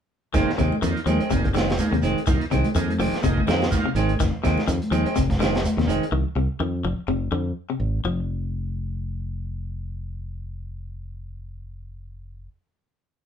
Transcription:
0.33 F1 D#3 G#3 A#3 C4 D#4 G#4, kick, snare, closed hi-hat, shekere
0.50 snare
0.57 D#2 C3 D#3 G#3 C4, kick, closed hi-hat, shekere
0.72 high conga
0.82 F2 D#3 A#3 D#4 F4, closed hi-hat, shekere
0.97 closed hi-hat
1.06 D#2 D#3 F3 G#3 C4, closed hi-hat, high conga, shekere
1.20 G#3 C4, muted fingered electric bass stroke, closed hi-hat
1.30 F1 C3 A#3 D#4 G#4, kick, closed hi-hat, shekere
1.44 kick, closed hi-hat
1.54 D3 D#3 G#3 C4, snare, closed hi-hat, high conga, shekere
1.70 snare, closed hi-hat
1.78 A#3 D#4 G#4, closed hi-hat, high conga, shekere
1.92 D#2 C3, closed hi-hat
2.02 F1 D#3 G#3 C4, closed hi-hat, shekere
2.18 closed hi-hat
2.27 C2 D#3 A#3 D#4 F4, kick, closed hi-hat, shekere
2.41 closed hi-hat
2.51 C2 C3 D#3 G#3 C4, kick, closed hi-hat, shekere
2.64 closed hi-hat, high conga
2.75 F2 D#3 A#3 D#4 G#4, closed hi-hat, shekere
2.89 closed hi-hat, high conga
2.99 F1 D#3 F3 G#3 C4 D5, open hi-hat, high conga, shekere
3.12 muted fingered electric bass stroke, snare, closed hi-hat
3.22 F1 C3 A#3 D#4 G#4 D#5, kick, closed hi-hat, shekere
3.37 kick, high conga
3.47 F2 D3 D#3 G#3 C4, snare, closed hi-hat, high conga, shekere
3.62 snare, closed hi-hat
3.70 A#3 D#4 F4 F5, kick, snare, closed hi-hat, high conga, shekere
3.86 C3
3.95 G#1 D#3 G#3 C4 G#5, closed hi-hat, shekere
4.09 closed hi-hat, high conga
4.20 F1 D#3, kick, snare, closed hi-hat, shekere
4.43 D#2 C3 D#3 G#3 C4, kick, snare, closed hi-hat, shekere
4.58 snare, high conga
4.68 F2 D#3, closed hi-hat, shekere
4.82 closed hi-hat, high conga
4.91 D#2 D#3 F3 G#3 C4, closed hi-hat, high conga, shekere
5.05 G#3 C4, muted fingered electric bass stroke, closed hi-hat
5.16 F1 C3, kick, closed hi-hat, shekere
5.30 kick, snare, closed hi-hat, high conga
5.39 D3 D#3 G#3 C4, snare, closed hi-hat, high conga, shekere
5.55 snare, closed hi-hat
5.64 closed hi-hat, high conga, shekere
5.77 D#2 C3, snare, closed hi-hat
5.87 F1 D#3 G#3 C4, closed hi-hat, shekere
6.03 closed hi-hat
6.12 C2 D#3
6.35 C2 C3
6.60 F2 D#3
6.84 F1 F3
6.98 muted fingered electric bass stroke
7.08 F1 C3
7.32 F2 D3
7.70 C3
7.80 G#1
8.04 F1 F3

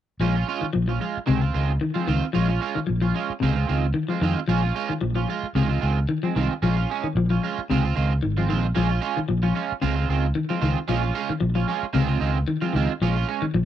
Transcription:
0.20 A#1 F3 G#3 C#4 F4
0.35 C#4 F4
0.48 G#3 C#4 F4
0.61 D#3, muted fingered electric bass stroke
0.73 A#1 F3
0.88 F3 C#4 F4
1.00 G#3 F4
1.17 muted fingered electric bass stroke
1.26 C#2 C3 D#3 G#3 C4, muted clean electric guitar stroke
1.41 C4 F4, muted clean electric guitar stroke
1.54 C#2 D#3 G#3 C4 F4
1.81 D#3
1.94 F3 G#3 C4 F4
2.07 C#2 D#3 C4 F4, muted clean electric guitar stroke
2.33 A#1 F3 G#3 C#4 F4
2.49 C#4 F4
2.60 G#3 C#4 F4
2.75 D#3, muted fingered electric bass stroke
2.87 A#1 F3
3.01 F3 C#4 F4
3.14 G#3 C#4 F4
3.30 muted fingered electric bass stroke
3.40 C#2 C3 D#3 G#3 C4 F4
3.55 G#3 C4 F4
3.68 C#2 D#3 G#3 C4 F4
3.94 D#3
4.08 F3 G#3 C4 F4
4.21 F2 D#3 G#3 C4 F4
4.48 A#1 F3 G#3 C#4 F4
4.62 C#4 F4
4.75 G#3 C#4 F4
4.89 D#3, muted fingered electric bass stroke
5.01 A#1 F3
5.15 F3 C#4 F4
5.29 G#3 F4
5.43 muted fingered electric bass stroke
5.55 C#2 C3 D#3 G#3 F4, muted clean electric guitar stroke
5.69 G#3 C4 F4
5.81 C#2 D#3 G#3 C4 F4
6.09 D#3
6.23 F3 G#3 C4
6.36 C2 D#3 G#3 C4 F4
6.62 A#1 F3 G#3 C#4 F4
6.77 C#4 F4
6.90 G#3 C#4, muted clean electric guitar stroke
7.04 D#3, muted fingered electric bass stroke
7.15 A#1 F3
7.30 F3 C#4 F4
7.43 G#3 C#4 F4
7.58 muted fingered electric bass stroke
7.70 C#2 C3 D#3 G#3 C4 F4
7.84 C4 F4
7.96 C#2 D#3 G#3 C4 F4
8.23 G#1 D#3
8.37 F3 G#3 C4 F4
8.49 A#1 D#3 G#3 C4 F4
8.75 A#1 F3 G#3 C#4 F4
8.89 C#4 F4
9.01 G#3 C#4 F4
9.17 D#3, muted fingered electric bass stroke
9.28 A#1 F3
9.43 F3 C#4 F4
9.55 G#3 C#4 F4
9.72 muted fingered electric bass stroke
9.81 C#2 C#3 G#3 C4 F4, muted clean electric guitar stroke
9.95 G#3 C4 F4
10.09 C#2 D#3 G#3 C4 F4
10.35 D#3
10.49 F3 G#3 C4 F4
10.61 C#2 D#3 G#3 C4 F4
10.88 A#1 F3 G#3 C#4 F4
11.01 C#4 F4
11.14 G#3 C#4 F4
11.29 D#3, muted fingered electric bass stroke
11.40 A#1 F3
11.55 F3 C#4 F4
11.68 G#3 C#4 F4
11.83 muted fingered electric bass stroke
11.93 C#2 C3 D#3 G#3 C4 F4
12.08 G#3 C4 F4
12.20 C#2 D#3 G#3 C4 F4
12.48 D#3
12.61 F3 G#3 C4 F4
12.73 C#2 D#3 G#3 C4 F4
13.02 A#1 F3 G#3 C#4 F4
13.16 C#4 F4
13.28 G#3 C#4, muted clean electric guitar stroke
13.42 D#3, muted fingered electric bass stroke
13.54 A#1 F3

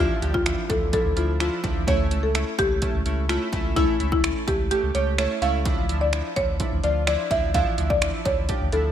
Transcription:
Already playing: downlifter
0.00 F3 D4 E4 F4
0.22 D2 F3 D4 G4, closed hi-hat
0.34 F4, kick
0.45 F3 D4 E4, finger snap, closed hi-hat
0.69 D2 F3 D4 E4 A4, kick, closed hi-hat
0.92 F3 D4 E4 A4, kick, closed hi-hat
1.05 D2
1.16 D2 F3 D4 E4 F4, closed hi-hat
1.40 F3 D4 E4 F4, finger snap, closed hi-hat
1.63 D2 F3 D4 E4, kick, closed hi-hat
1.87 A3 C#4 E4 C#5, kick, closed hi-hat
2.11 C#2 A3 C#4 E4, closed hi-hat
2.23 A4
2.35 A3 C#4 E4, finger snap, closed hi-hat
2.58 C#2 A3 C#4 E4 G4, kick, closed hi-hat
2.82 A3 C#4 E4, kick, closed hi-hat
2.94 C#2
3.05 C#2 A3 C#4 E4, closed hi-hat
3.29 A3 C#4 E4 F4, finger snap, closed hi-hat
3.53 C#2 A3 C#4 E4, kick, closed hi-hat
3.76 A3 C#4 E4, kick, closed hi-hat
4.00 C#2 A3 C#4 E4, closed hi-hat
4.12 E4, kick
4.23 A3 C#4 E4, finger snap, closed hi-hat
4.47 C#2 A3 C#4 E4 G4, kick, closed hi-hat
4.71 A3 C#4 G4, closed hi-hat
4.83 C#2
4.95 C#2 A3 C#4 G4 C#5, closed hi-hat
5.18 A3 C#4 E4 C#5, finger snap, closed hi-hat
5.42 C#2 A3 C#4 E4 F5, closed hi-hat
5.65 F3 D4 E4, kick, closed hi-hat
5.89 D2 F3 D4 E4, closed hi-hat
6.01 D5
6.13 F3 D4 E4, finger snap, closed hi-hat
6.36 D2 F3 D4 E4 C#5, kick, closed hi-hat
6.60 F3 D4 E4, kick, closed hi-hat
6.72 D2
6.83 D2 F3 D4 F4 D5, closed hi-hat
7.07 F3 D4 E4 D5, finger snap, closed hi-hat
7.30 D2 F3 D4 E4 E5, kick, closed hi-hat
7.54 F3 D4 E4 F5, kick, closed hi-hat
7.78 D2 F3 D4 E4, closed hi-hat
7.90 D5, kick
8.01 F3 D4 E4, finger snap, closed hi-hat
8.25 D2 F3 D4 E4 C#5, kick, closed hi-hat
8.48 F3 D4 G4, kick, closed hi-hat
8.61 D2
8.72 D2 F3 D4 E4 A4, closed hi-hat

